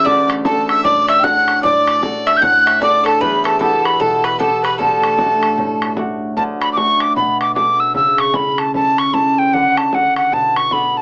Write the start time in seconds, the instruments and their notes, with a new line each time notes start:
Already playing: harp E2 B3 C#4 E4 G4 A4
0.05 harp D2, mandolin D5, fiddle D5, tin whistle D6, bodhran
0.30 bodhran
0.45 harp D4 F#4 A4, fiddle A4, mandolin A4, tin whistle A5, bodhran
0.69 fiddle E5, tin whistle E6, bodhran
0.83 harp A2, mandolin D5, fiddle D5, tin whistle D6, bodhran
1.08 fiddle E5, mandolin E5, tin whistle E6, bodhran
1.19 harp D4 F#4, fiddle G5
1.23 harp A4, mandolin F#5, fiddle F#5, tin whistle F#6, bodhran
1.48 bodhran
1.63 harp A2, mandolin D5, fiddle D5, tin whistle D6, bodhran
1.87 bodhran
1.99 harp D4 F#4, bodhran
2.05 harp A4
2.26 fiddle E5, mandolin E5, tin whistle E6, bodhran
2.37 harp A2, tin whistle G6
2.42 mandolin F#5, fiddle F#5, tin whistle F#6, bodhran
2.66 mandolin E5, bodhran
2.80 harp D4 F#4 A4, fiddle D5, mandolin D5, tin whistle D6, bodhran
3.04 mandolin A4, fiddle A4, tin whistle A5, bodhran
3.21 harp E2, fiddle B4, mandolin B4, tin whistle B5, bodhran
3.44 mandolin A4, fiddle A4, tin whistle A5, bodhran
3.59 harp B3 E4 G4, mandolin A4, fiddle A4, tin whistle A5, bodhran
3.85 fiddle B4, tin whistle B5, bodhran
4.00 harp B2, mandolin A4, fiddle A4, tin whistle A5, bodhran
4.23 fiddle B4, mandolin B4, tin whistle B5, bodhran
4.38 harp B3 E4 G4, fiddle A4, mandolin A4, tin whistle A5, bodhran
4.63 fiddle B4, mandolin B4, tin whistle B5, bodhran
4.78 harp D2, fiddle A4, mandolin A4, tin whistle A5, bodhran
5.03 bodhran
5.17 harp A3 D4 F#4, bodhran
5.43 bodhran
5.57 harp A2, bodhran
5.82 bodhran
5.96 harp A3 D4 F#4, bodhran
6.36 harp D2, tin whistle A5, bodhran
6.61 tin whistle B5, bodhran
6.73 harp A3 D4 F#4, tin whistle D6
6.77 tin whistle C#6, bodhran
7.00 tin whistle D6, bodhran
7.16 harp B2, tin whistle B5, bodhran
7.41 tin whistle D6, bodhran
7.55 harp B3 D4 A4, tin whistle D6, bodhran
7.80 tin whistle E6
7.94 harp C#3, tin whistle E6, bodhran
8.18 tin whistle C#6, bodhran
8.34 harp C#4 E4 A4, tin whistle B5, bodhran
8.58 tin whistle A5, bodhran
8.74 harp C#4 E4 A4, tin whistle A5, bodhran
8.98 tin whistle C#6, bodhran
9.13 harp C#4 E4 A4, tin whistle A5, bodhran
9.38 tin whistle G5
9.53 harp D3, tin whistle F#5, bodhran
9.77 tin whistle A5, bodhran
9.93 harp D4 F#4 A4, tin whistle F#5, bodhran
10.16 tin whistle F#5, bodhran
10.32 harp B2, tin whistle A5, bodhran
10.56 tin whistle C#6, bodhran
10.71 harp B3 D4 A4, tin whistle B5, bodhran
10.97 tin whistle A5